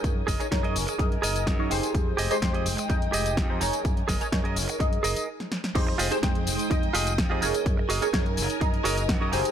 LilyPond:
<<
  \new Staff \with { instrumentName = "String machine" } { \time 4/4 \key f \minor \tempo 4 = 126 << { ees'''1 | ees'''1~ | ees'''2. r4 | ees'''1 |
ees'''1 | } \\ { <bes' aes''>1 | <aes g''>1 | <bes' aes''>2. r4 | <aes g''>1 |
<bes' aes''>1 | } >> }
  \new Staff \with { instrumentName = "Clean electric guitar" } { \time 4/4 \key f \minor << { r1 | r1 | r1 | r1 |
r2 r8 des''16 ees''16 ges''8 aes''8 | } \\ { r8 <aes' bes' ees''>8 r16 <aes' bes' ees''>16 r4 <aes' bes' ees''>4 r8 | r8 <g' aes' ees''>8 r16 <g' aes' ees''>16 r4 <g' aes' ees''>4 r8 | r8 <aes' bes' ees''>8 r16 <aes' bes' ees''>16 r4 <aes' bes' ees''>8 r4 | r8 <f' g' aes' ees''>16 r4. r16 <f' g' aes' ees''>8 r16 <f' g' aes' ees''>8 r16 |
r8 <ges' aes' bes' ees''>16 r4. r16 <ges' aes' bes' ees''>8 r16 <ges' aes' bes' ees''>8 r16 | } >> }
  \new Staff \with { instrumentName = "Analog polysynth" } { \time 4/4 \key f \minor <ees' aes' bes' des''>8. <ees' aes' bes' des''>16 <ees' aes' bes' des''>4 <ees' aes' bes' ees''>4~ <ees' aes' bes' ees''>16 <ees' aes' bes' des''>16 <ees' g' aes' c''>8~ | <ees' g' aes' c''>8. <ees' g' aes' c''>16 <aes ees' c'' g''>4 <aes ees' ees'' g''>4~ <aes ees' ees'' g''>16 <ees' g' aes' c''>16 <ees' aes' bes' des''>8~ | <ees' aes' bes' des''>8. <ees' aes' bes' des''>16 <ees' aes' bes' des''>4 <ees' aes' bes' ees''>4 r4 | <ees' g' aes' c''>8. <ees' g' aes' c''>16 <aes ees' c'' g''>4 <aes ees' ees'' g''>4~ <aes ees' ees'' g''>16 <ees' g' aes' c''>16 <ees' aes' bes' des''>8~ |
<ees' aes' bes' des''>8. <ees' aes' bes' des''>16 <ees' aes' bes' des''>4 <ees' aes' bes' ees''>4~ <ees' aes' bes' ees''>16 <ees' aes' bes' des''>16 <ees' g' aes' c''>8 | }
  \new Staff \with { instrumentName = "Fingered electric bass" } { \clef bass \time 4/4 \key f \minor ges,8 ges,,8 ges,8 ges,,8 ges,8 ges,,8 ges,8 ges,,8 | f,8 f,,8 f,8 f,,8 f,8 f,,8 f,8 f,,8 | ges,8 ges,,8 ges,8 ges,,8 ges,8 ges,,8 r4 | f,8 f,,8 f,8 f,,8 f,8 f,,8 f,8 f,,8 |
ges,8 ges,,8 ges,8 ges,,8 ges,8 ges,,8 ges,8 ges,,8 | }
  \new DrumStaff \with { instrumentName = "Drums" } \drummode { \time 4/4 <hh bd tamb>8 <hho bd tamb>16 <hh tamb>16 <hh bd sn tamb>16 hh16 <hho tamb>16 <hh tamb>16 <hh bd tamb>16 hh16 <hho tamb>16 <hh tamb>16 <hh bd sn tamb>8 <hho tamb>16 <hh tamb>16 | <hh bd tamb>8 <hho tamb>16 <hh tamb>16 <hh bd sn tamb>16 hh16 <hho tamb>16 <hh tamb>16 <hh bd tamb>16 hh16 <hho tamb>16 <hh tamb>16 <hh bd sn tamb>8 <hho tamb>16 <hh tamb>16 | <hh bd tamb>16 hh16 <hho bd sn tamb>16 <hh tamb>16 <hh bd sn tamb>16 hh16 <hho tamb>16 <hh tamb>16 <hh bd>16 hh16 <hho tamb>16 <hh tamb>16 r16 sn16 sn16 sn16 | <cymc hh bd tamb>8 <hho tamb>16 <hh tamb>16 <hh bd sn tamb>16 hh16 <hho tamb>16 <hh tamb>16 <hh bd tamb>16 hh16 <hho tamb>16 <hh tamb>16 <hh bd sn tamb>8 <hho tamb>16 <hh tamb>16 |
<hh bd tamb>8 <hho tamb>16 <hh tamb>16 <hh bd sn tamb>16 hh16 <hho tamb>16 <hh tamb>16 <hh bd tamb>16 hh16 <hho tamb>16 <hh tamb>16 <hh bd sn tamb>8 <hho tamb>16 <hh tamb>16 | }
>>